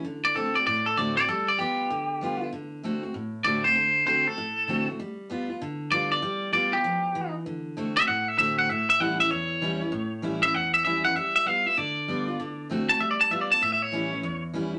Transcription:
0.05 D3
0.25 D5
0.35 D3 A3 C4 F#4 A4
0.56 C4 F#4 D5
0.66 A2 D5
0.86 A4
0.97 D3 A3 C4 F#4 D5
1.17 C4 F#4 D5
1.29 G3 A4
1.48 D5
1.59 G3 B3 F4 G4
1.90 D3
2.21 G3 B3 F4
2.41 B3 F4
2.52 D3
2.83 D3 A3 C4 F#4
3.03 C4 F#4
3.14 A2
3.45 D3 A3 C4 F#4 D5
3.64 C4 F#4 C5
3.76 D3
4.06 D3 A3 C4 F#4 C5
4.26 F#4 A4
4.38 A2
4.68 D3 A3 C4 F#4
4.88 C4 F#4
4.99 G3
5.30 G3 B3 F4
5.50 B3 F4
5.61 D3
5.91 G3 B3 F4 D5
6.11 B3 F4 D5
6.22 G3
6.52 G3 B3 F4 D5
6.73 B3 F4 G4
6.84 F3
7.15 E3
7.46 D3
7.77 D3 A3 C4 F#4
7.97 C4 F#4 E5
8.08 A2 F#5
8.28 E5
8.38 D3 A3 C4 F#4 E5
8.59 F#5
8.69 A2 E5
8.90 E5
9.00 E3 G3 C#4 E4 F#5
9.19 C#4 E4 E5
9.31 E2 C#5
9.62 E3 G3 C#4 E4
9.81 C#4 E4
9.92 A2
10.22 E3 G3 C#4 E4
10.42 C#4 E4 E5
10.54 E2 F#5
10.74 E5
10.85 E3 G3 C#4 E4 E5
11.04 C#4 E4 F#5
11.16 G3 E5
11.36 E5
11.46 G3 B3 F4 F5
11.66 B3 F4 E5
11.78 D3 D5
12.08 G3 B3 F4
12.28 B3 F4
12.40 D3
12.69 D3 A3 C4 F#4
12.89 C4 F#4 A5
13.00 G3 E5
13.11 D5
13.21 A5
13.30 G3 B3 F4 E5
13.41 D5
13.51 B3 F4 A5
13.61 A2 E5
13.72 E5
13.82 C#5
13.92 E3 G3 C#4 E4
14.12 C#4 E4
14.23 E2
14.53 E3 G3 C#4 E4
14.74 E4

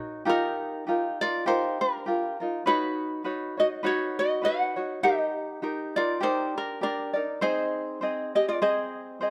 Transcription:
Already playing: D#4 F#4 A#4 C#5
0.25 D#4 F4 G4 A#4
0.29 D#4 A#4
0.87 D#4 F4 G4 A#4
1.21 D#4 F4 A#4 D5
1.46 D#4 F4 G4 A#4 C5
1.81 D4 A#4
2.06 F4 G4 A#4
2.40 D#4 F4 A#4
2.66 D#4 F#4 B4 C#5
3.24 D#4 F#4 B4 C#5
3.57 D#4 F#4 C#5 D#5
3.83 D#4 F#4 B4 C#5
4.19 F#4 D#5
4.42 D#4 F#4 B4 C#5 F#5
4.46 B4
4.76 D#4 F#4 C#5
5.03 D#4 G4 A#4 D#5
5.62 D#4 G4 A#4
5.96 D#4 F4 A#4 D5
6.21 D#4 G4 A#4 C5 D5
6.58 D4 A#4
6.81 D4 G4 A#4 D5
7.13 D#4 A#4 D5
7.41 C4 D#4 G#4 C5 D#5
8.01 C4 G#4 C5 D#5
8.35 C4 G4 G#4 D#5
8.48 F4 D5
8.62 C4 G#4 C5 D#5
9.21 C4 G#4 C5 D#5

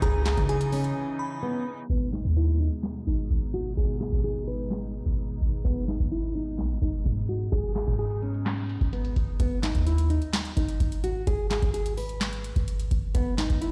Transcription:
Already playing: C#3 E3 D#4
0.02 C#2 G#4 A#5, kick, closed hi-hat
0.26 G#4, snare, clap, closed hi-hat
0.37 C#3, kick, closed hi-hat
0.49 G#4 G#5, closed hi-hat
0.61 closed hi-hat
0.72 C#4, open hi-hat
0.84 closed hi-hat
1.19 B5
1.43 B3
1.90 G#1 B2 G#3 B3 D#4
2.13 D#4, snare, clap
2.25 D#2
2.36 E4, closed hi-hat
2.48 closed hi-hat
2.60 D#4, closed hi-hat
2.72 closed hi-hat
2.83 snare, clap
3.07 G#1 D#4, closed hi-hat
3.19 closed hi-hat
3.30 G#1, closed hi-hat
3.54 F#4, closed hi-hat
3.77 G#1 G#4, closed hi-hat
4.01 G#4, snare, clap, closed hi-hat
4.12 G#1, closed hi-hat
4.24 G#4, closed hi-hat
4.36 closed hi-hat
4.48 B4, closed hi-hat
4.71 snare, clap
4.94 closed hi-hat
5.06 G#1
5.18 closed hi-hat
5.30 closed hi-hat
5.41 G#1, closed hi-hat
5.65 G#1 B3, kick, closed hi-hat
5.88 D#4, snare, clap
6.00 G#1, kick, closed hi-hat
6.12 E4, closed hi-hat
6.23 closed hi-hat
6.35 D#4, closed hi-hat
6.47 closed hi-hat
6.58 B1, snare, clap, closed hi-hat
6.70 G#1, closed hi-hat
6.82 G#1 D#4, kick, closed hi-hat
6.94 closed hi-hat
7.05 G#2, kick, closed hi-hat
7.29 F#4, closed hi-hat
7.52 G#1 G#4, kick, closed hi-hat
7.76 G#4, snare, clap, closed hi-hat
7.87 G#2, kick, closed hi-hat
7.99 G#4, closed hi-hat
8.11 closed hi-hat
8.22 C#4, closed hi-hat
8.34 closed hi-hat
8.46 snare, clap, closed hi-hat
8.58 closed hi-hat
8.69 closed hi-hat
8.81 G#1, kick, closed hi-hat
8.93 B3, closed hi-hat
9.05 closed hi-hat
9.16 G#1, kick, closed hi-hat
9.40 G#1 B3, kick, closed hi-hat
9.63 D#4, snare, clap, closed hi-hat
9.75 D#2, kick, closed hi-hat
9.87 E4, closed hi-hat
9.98 closed hi-hat
10.10 D#4, closed hi-hat
10.22 closed hi-hat
10.33 snare, clap, closed hi-hat
10.45 closed hi-hat
10.57 G#1 D#4, kick, closed hi-hat
10.69 closed hi-hat
10.80 G#1, kick, closed hi-hat
10.92 closed hi-hat
11.04 F#4, closed hi-hat
11.27 G#1 G#4, kick, closed hi-hat
11.51 G#4, snare, clap, closed hi-hat
11.62 G#1, kick, closed hi-hat
11.74 G#4, closed hi-hat
11.86 closed hi-hat
11.97 B4, open hi-hat
12.09 closed hi-hat
12.21 snare, clap, closed hi-hat
12.33 closed hi-hat
12.44 closed hi-hat
12.56 G#1, kick, closed hi-hat
12.68 closed hi-hat
12.80 closed hi-hat
12.91 G#1, kick, closed hi-hat
13.15 G#1 B3, kick, closed hi-hat
13.38 D#4, snare, clap, closed hi-hat
13.50 G#1, kick, closed hi-hat
13.61 E4, closed hi-hat

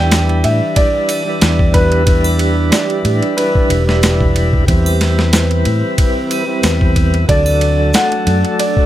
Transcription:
Already playing: E2 E3 G3 D4 E4 G4 B4 G5
0.11 snare, ride, shaker
0.29 ride
0.44 A2 E5, ride
0.76 D5, kick, ride
1.09 ride, triangle
1.25 G3 D4 E4
1.29 B4
1.41 E2, snare, ride, shaker
1.59 kick
1.74 B4, kick, ride
1.92 ride
2.05 G3 D4 E4, kick, ride
2.10 B4
2.24 triangle
2.39 ride
2.71 D5, snare, ride, shaker
2.90 ride
3.05 A2, ride
3.23 ride
3.37 B4, ride
3.55 kick
3.70 E1, ride
3.86 G3 D4 E4, snare
3.90 B4
4.03 snare, ride, shaker
4.21 kick
4.36 ride
4.53 kick
4.67 E2 G3 C4 E4 B4, kick, ride
4.71 B4
4.86 triangle
5.01 snare, ride
5.19 snare
5.33 snare, ride, shaker
5.51 ride
5.65 A2, ride
5.98 kick, ride
6.31 ride, triangle
6.46 G3 C4 E4
6.51 B4
6.63 E2, snare, ride, shaker
6.81 kick
6.96 kick, ride
7.14 ride
7.27 D2 F#3 A3 D4 A4 D5, kick, ride
7.31 A4
7.46 triangle
7.61 ride
7.94 F#5, snare, ride, shaker
8.12 ride
8.27 F#2, ride
8.45 ride
8.59 D5, ride
8.77 kick

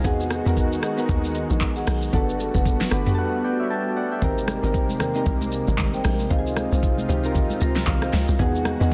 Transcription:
0.04 E2 D#3 G#3 B3 D#4 F#4 G#4 D#5 F#5, kick, shaker
0.21 shaker
0.30 cross-stick, shaker
0.45 E2 B3 D#4 F#4 G#4 A#4 D#5 F#5, shaker
0.57 kick, shaker
0.72 shaker
0.83 G#4 D#5 F#5, cross-stick, shaker
0.97 B3 D#4 F#4 A#4, shaker
1.09 D#2, kick, shaker
1.24 shaker
1.35 shaker
1.50 A#1, shaker
1.61 kick, clap, shaker
1.76 G#4 D#5 F#5, shaker
1.87 B1, cross-stick, open hi-hat, shaker
2.02 shaker
2.13 G1 G3 A3 B3 D4 F#4 A4 B4 F#5, kick, shaker
2.29 shaker
2.40 shaker
2.54 F#1 A4 B4 F#5, kick, shaker
2.66 kick, shaker
2.81 snare, shaker
2.91 G1 B3 D4 F#4 A4 B4 D5 F#5, cross-stick, shaker
3.06 B3 D4 F#4 G4, mid tom, shaker
3.15 A4 F#5
3.44 B4 D5 G5
3.60 C#5 E5
3.70 E5 G5 A5
3.97 D5 F#5
4.12 E5 G5
4.22 G#1 C3 G#3 A#3 C4 D#4 G4 A#4 C5 G5, kick, low conga, shaker
4.38 shaker
4.48 cross-stick, high conga, shaker
4.63 G#1 C4 D#4 G4 A#4 C5 G5, shaker
4.74 kick, shaker
4.89 high conga, shaker
5.00 A#4 C5 G5, cross-stick, low conga, shaker
5.15 C4 D#4 G4 A#4, shaker
5.26 C2, kick, low conga, shaker
5.41 high conga, shaker
5.52 high conga, shaker
5.67 G#1, high conga, shaker
5.78 kick, clap, low conga, shaker
5.93 A#4 C5 G5, shaker
6.04 A#1, cross-stick, open hi-hat, high conga, shaker
6.19 shaker
6.30 C#2 C3 C4 D#4 F4 G4 C5 D#5 F5, kick, low conga, shaker
6.39 G#4
6.47 shaker
6.57 cross-stick, high conga, shaker
6.72 C2 C5 D#5 F5, shaker
6.83 kick, shaker
6.98 high conga, shaker
7.08 C#2 C4 D#4 F4 G4 C5 D#5 F5, low conga, shaker
7.23 C4 D#4 F4 A#4, shaker
7.35 kick, low conga, shaker
7.50 high conga, shaker
7.61 C#2 A#5, high conga, shaker
7.76 snare, high conga, shaker
7.87 C2 F5, kick, clap, low conga, shaker
8.02 C5 D#5 F5, cross-stick, shaker
8.13 C#2, snare, open hi-hat, high conga, shaker
8.28 C2, shaker
8.39 E2 D#3 G#3 B3 D#4 F#4 G#4 D#5 F#5, kick, low conga, shaker
8.55 shaker
8.65 cross-stick, high conga, shaker
8.80 E2 B3 D#4 F#4 G#4 D#5 F#5, shaker

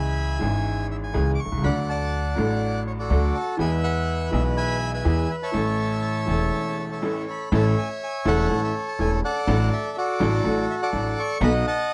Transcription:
Already playing: C#2 C#3 E3 G#3 C#4 G#4 E5 G#5 B5
0.38 G#1 G#2 E3 G#3 C#4
0.43 G#4
0.91 E5
1.03 G#5
1.14 C#2 C#3 E3 G#3 C#4 G#4
1.35 D6
1.39 C#6
1.45 B1
1.51 C2
1.57 C#2
1.62 D2 D3 F#3 A3 D4 A4 D5 F#5 B5
1.89 D5 F#5 A5
2.35 A1 A2 F#3 A3 D4
2.40 A4
2.87 C#5
2.99 F#4 A4 D5
3.10 D2 D3 F#3 A3 D4 A4
3.35 A5
3.57 E2 E3 G#3 B3 G#4 B4 E5 G#5
3.84 B4 F#5
4.31 B1 B2 E3 G#3 B3 G#4 E5
4.57 E5 G#5 B5
4.94 B4 E5 G#5
5.04 E2 E3 G#3 B3 G#4
5.31 E5
5.43 C#5 E5 A5
5.51 A1 A2 E3 A3 C#4 A4
6.26 E1 E2 E3 A3 C#4
6.30 A4
6.80 C#5
6.92 A4 C#5 E5
7.02 A1 A2 E3 A3 C#4 A4
7.30 B5
7.52 A1 A2 E3 A3 C#4 E4 A4 C#5 E5 A5
7.78 G#5
8.04 G#5
8.25 E1 E2 E3 A3 C#4 E4 A4 C#5 F#5
8.49 A1 A2 E3 A3 C#4 E4 A4
8.64 E5
8.88 A5
8.99 E1 E2 E3 A3 C#4 E4 A4 G#5
9.25 A4 D5 F#5
9.47 A1 A2 F#3 A3 D4 F#4 A4
9.73 E5
9.98 F#4 A4 D5
10.20 A1 A2 F#3 A3 D4 F#4 A4
10.44 A1 A2 F#3 A3 D4 F#4 A4
10.70 E5
10.82 A4 D5 F#5
10.92 A1 A2 F#3 A3 D4 F#4 A4
11.19 C#6
11.41 B1 B2 F#3 B3 D#4 A4 D#5 F#5 B5
11.67 D#5 F#5 A5

